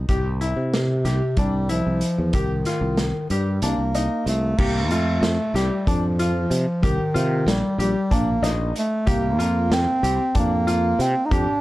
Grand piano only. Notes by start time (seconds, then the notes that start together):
0.09 G4
0.41 E4
1.05 G4
1.38 D4
1.69 E4
2.34 G4
2.66 F4
3.31 G4
3.63 D4
3.95 D#4
4.60 G4
4.91 F4
5.55 G4
5.87 D4
6.19 F4
6.83 G4
7.14 F4
7.79 G4
8.11 D4
8.43 D#4
9.07 G4
9.39 F4
10.03 G4
10.35 D4
10.67 F4
11.31 G4